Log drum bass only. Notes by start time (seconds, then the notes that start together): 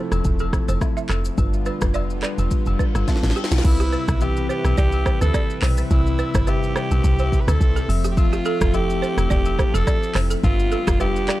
0.12 E1
0.25 E1
0.68 F1
1.10 F1
1.38 G1
1.82 F1
2.38 E1
2.67 F1
2.95 G1
3.23 A1
3.52 B1
3.65 C2
4.08 B1
4.65 B1
4.78 C2
5.21 D2
5.63 B1
5.91 C2
6.35 G1
6.91 B1
7.04 C2
7.48 D2
7.61 C2
7.89 F1
8.61 F1
9.17 E1
9.31 E1
9.74 F1
10.15 F1
10.44 G1
10.87 F1